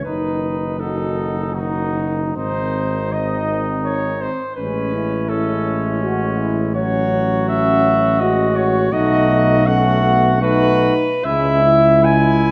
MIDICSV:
0, 0, Header, 1, 6, 480
1, 0, Start_track
1, 0, Tempo, 742574
1, 45, Time_signature, 3, 2, 24, 8
1, 1004, Tempo, 820793
1, 1484, Tempo, 754717
1, 1964, Tempo, 725514
1, 6284, Tempo, 758534
1, 6764, Tempo, 831025
1, 7244, Tempo, 788436
1, 8014, End_track
2, 0, Start_track
2, 0, Title_t, "Flugelhorn"
2, 0, Program_c, 0, 56
2, 25, Note_on_c, 0, 71, 84
2, 516, Note_on_c, 0, 69, 85
2, 526, Note_off_c, 0, 71, 0
2, 997, Note_on_c, 0, 66, 88
2, 1006, Note_off_c, 0, 69, 0
2, 1376, Note_off_c, 0, 66, 0
2, 1476, Note_on_c, 0, 72, 94
2, 1961, Note_on_c, 0, 75, 95
2, 1971, Note_off_c, 0, 72, 0
2, 2279, Note_off_c, 0, 75, 0
2, 2438, Note_on_c, 0, 73, 96
2, 2682, Note_on_c, 0, 72, 100
2, 2692, Note_off_c, 0, 73, 0
2, 2906, Note_off_c, 0, 72, 0
2, 2910, Note_on_c, 0, 71, 101
2, 3393, Note_on_c, 0, 69, 94
2, 3403, Note_off_c, 0, 71, 0
2, 3874, Note_off_c, 0, 69, 0
2, 4357, Note_on_c, 0, 73, 106
2, 4819, Note_off_c, 0, 73, 0
2, 4849, Note_on_c, 0, 76, 119
2, 5317, Note_on_c, 0, 75, 104
2, 5327, Note_off_c, 0, 76, 0
2, 5555, Note_on_c, 0, 73, 118
2, 5565, Note_off_c, 0, 75, 0
2, 5799, Note_on_c, 0, 75, 123
2, 5809, Note_off_c, 0, 73, 0
2, 6289, Note_on_c, 0, 78, 127
2, 6298, Note_off_c, 0, 75, 0
2, 6766, Note_off_c, 0, 78, 0
2, 6769, Note_on_c, 0, 71, 125
2, 7243, Note_on_c, 0, 76, 126
2, 7252, Note_off_c, 0, 71, 0
2, 7728, Note_on_c, 0, 80, 125
2, 7737, Note_off_c, 0, 76, 0
2, 8014, Note_off_c, 0, 80, 0
2, 8014, End_track
3, 0, Start_track
3, 0, Title_t, "Flugelhorn"
3, 0, Program_c, 1, 56
3, 34, Note_on_c, 1, 63, 61
3, 505, Note_off_c, 1, 63, 0
3, 509, Note_on_c, 1, 63, 60
3, 988, Note_off_c, 1, 63, 0
3, 998, Note_on_c, 1, 63, 66
3, 1471, Note_off_c, 1, 63, 0
3, 1477, Note_on_c, 1, 63, 65
3, 1951, Note_off_c, 1, 63, 0
3, 1963, Note_on_c, 1, 63, 70
3, 2732, Note_off_c, 1, 63, 0
3, 2920, Note_on_c, 1, 61, 70
3, 3379, Note_off_c, 1, 61, 0
3, 3400, Note_on_c, 1, 61, 78
3, 4341, Note_off_c, 1, 61, 0
3, 4361, Note_on_c, 1, 66, 79
3, 5770, Note_off_c, 1, 66, 0
3, 5797, Note_on_c, 1, 66, 93
3, 6273, Note_off_c, 1, 66, 0
3, 6285, Note_on_c, 1, 66, 89
3, 6754, Note_off_c, 1, 66, 0
3, 6764, Note_on_c, 1, 66, 94
3, 7068, Note_off_c, 1, 66, 0
3, 7237, Note_on_c, 1, 64, 94
3, 7698, Note_off_c, 1, 64, 0
3, 7719, Note_on_c, 1, 64, 86
3, 8014, Note_off_c, 1, 64, 0
3, 8014, End_track
4, 0, Start_track
4, 0, Title_t, "Trombone section"
4, 0, Program_c, 2, 61
4, 48, Note_on_c, 2, 63, 67
4, 515, Note_off_c, 2, 63, 0
4, 522, Note_on_c, 2, 66, 68
4, 1003, Note_on_c, 2, 63, 67
4, 1004, Note_off_c, 2, 66, 0
4, 1477, Note_on_c, 2, 60, 69
4, 1483, Note_off_c, 2, 63, 0
4, 2809, Note_off_c, 2, 60, 0
4, 2921, Note_on_c, 2, 61, 71
4, 3159, Note_off_c, 2, 61, 0
4, 3159, Note_on_c, 2, 64, 85
4, 3878, Note_off_c, 2, 64, 0
4, 3879, Note_on_c, 2, 66, 85
4, 4115, Note_off_c, 2, 66, 0
4, 4117, Note_on_c, 2, 64, 81
4, 4358, Note_on_c, 2, 61, 81
4, 4361, Note_off_c, 2, 64, 0
4, 4836, Note_off_c, 2, 61, 0
4, 4844, Note_on_c, 2, 61, 90
4, 5305, Note_off_c, 2, 61, 0
4, 5319, Note_on_c, 2, 66, 100
4, 5797, Note_on_c, 2, 63, 93
4, 5798, Note_off_c, 2, 66, 0
4, 6035, Note_off_c, 2, 63, 0
4, 6045, Note_on_c, 2, 63, 89
4, 6281, Note_off_c, 2, 63, 0
4, 6282, Note_on_c, 2, 61, 89
4, 6515, Note_off_c, 2, 61, 0
4, 6522, Note_on_c, 2, 59, 92
4, 6764, Note_off_c, 2, 59, 0
4, 6766, Note_on_c, 2, 63, 91
4, 7145, Note_off_c, 2, 63, 0
4, 7243, Note_on_c, 2, 61, 88
4, 7482, Note_off_c, 2, 61, 0
4, 7484, Note_on_c, 2, 64, 95
4, 8014, Note_off_c, 2, 64, 0
4, 8014, End_track
5, 0, Start_track
5, 0, Title_t, "Trombone"
5, 0, Program_c, 3, 57
5, 42, Note_on_c, 3, 51, 61
5, 512, Note_off_c, 3, 51, 0
5, 527, Note_on_c, 3, 51, 60
5, 997, Note_off_c, 3, 51, 0
5, 1003, Note_on_c, 3, 51, 62
5, 1474, Note_off_c, 3, 51, 0
5, 1484, Note_on_c, 3, 51, 57
5, 1955, Note_off_c, 3, 51, 0
5, 1971, Note_on_c, 3, 51, 64
5, 2736, Note_off_c, 3, 51, 0
5, 2922, Note_on_c, 3, 56, 71
5, 3380, Note_off_c, 3, 56, 0
5, 3417, Note_on_c, 3, 56, 72
5, 4364, Note_on_c, 3, 54, 82
5, 4374, Note_off_c, 3, 56, 0
5, 5322, Note_on_c, 3, 56, 80
5, 5332, Note_off_c, 3, 54, 0
5, 5796, Note_off_c, 3, 56, 0
5, 5800, Note_on_c, 3, 57, 89
5, 6275, Note_off_c, 3, 57, 0
5, 6285, Note_on_c, 3, 57, 87
5, 6754, Note_off_c, 3, 57, 0
5, 6762, Note_on_c, 3, 57, 92
5, 7067, Note_off_c, 3, 57, 0
5, 7241, Note_on_c, 3, 56, 88
5, 7700, Note_off_c, 3, 56, 0
5, 7728, Note_on_c, 3, 56, 84
5, 8014, Note_off_c, 3, 56, 0
5, 8014, End_track
6, 0, Start_track
6, 0, Title_t, "Tuba"
6, 0, Program_c, 4, 58
6, 42, Note_on_c, 4, 30, 64
6, 1460, Note_off_c, 4, 30, 0
6, 1480, Note_on_c, 4, 32, 68
6, 2721, Note_off_c, 4, 32, 0
6, 2922, Note_on_c, 4, 33, 74
6, 5770, Note_off_c, 4, 33, 0
6, 5797, Note_on_c, 4, 35, 90
6, 7044, Note_off_c, 4, 35, 0
6, 7244, Note_on_c, 4, 37, 101
6, 8014, Note_off_c, 4, 37, 0
6, 8014, End_track
0, 0, End_of_file